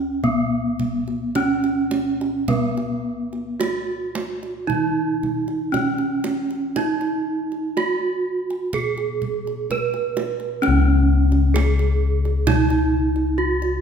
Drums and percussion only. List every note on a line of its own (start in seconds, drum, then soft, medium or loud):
0.24 kendang low medium
0.80 kendang low medium
1.08 kendang slap soft
1.35 kendang high soft
1.35 kendang low medium
1.64 kendang slap soft
1.91 kendang high medium
2.21 kendang slap soft
2.48 kendang low medium
2.77 kendang slap soft
3.33 kendang slap soft
3.61 kendang high medium
4.15 kendang high medium
4.43 kendang slap soft
4.70 kendang low medium
5.23 kendang low soft
5.48 kendang slap soft
5.74 kendang high soft
5.74 kendang low soft
5.98 kendang slap soft
6.24 kendang high soft
6.51 kendang slap soft
6.76 kendang high soft
6.76 kendang low medium
7.01 kendang slap soft
7.52 kendang slap soft
7.77 kendang high medium
8.50 kendang slap soft
8.73 kendang low medium
8.98 kendang slap soft
9.22 kendang low soft
9.47 kendang slap soft
9.71 kendang high soft
9.71 kendang low soft
9.94 kendang slap soft
10.17 kendang high soft
10.40 kendang slap soft
10.63 kendang high soft
11.32 kendang slap soft
11.56 kendang high medium
11.79 kendang slap soft
12.25 kendang slap soft
12.47 kendang high medium
12.47 kendang low medium
12.70 kendang slap soft
13.16 kendang slap soft
13.62 kendang slap soft